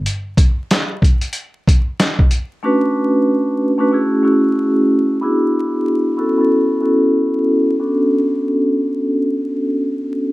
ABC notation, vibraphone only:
X:1
M:4/4
L:1/16
Q:"Swing 16ths" 1/4=93
K:Bdor
V:1 name="Vibraphone"
z16 | [A,CDFB]6 z [A,CDFB] [A,CEFG]2 [A,CEFG]6 | [B,DEFG]6 [B,CEFA] [B,CEFA]3 [B,CEFA]6 | [B,CDFA]16 |]